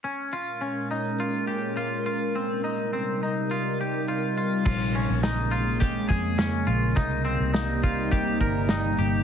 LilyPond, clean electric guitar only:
\new Staff \with { instrumentName = "Clean electric guitar" } { \time 4/4 \key bes \dorian \tempo 4 = 104 des'8 f'8 des'8 ees'8 f'8 g'8 f'8 f'8 | c'8 ees'8 c'8 ees'8 f'8 g'8 f'8 f'8 | f'8 des'8 ees'8 f'8 g'8 aes'8 des'8 f'8 | ees'8 c'8 ees'8 f'8 g'8 bes'8 ees'8 g'8 | }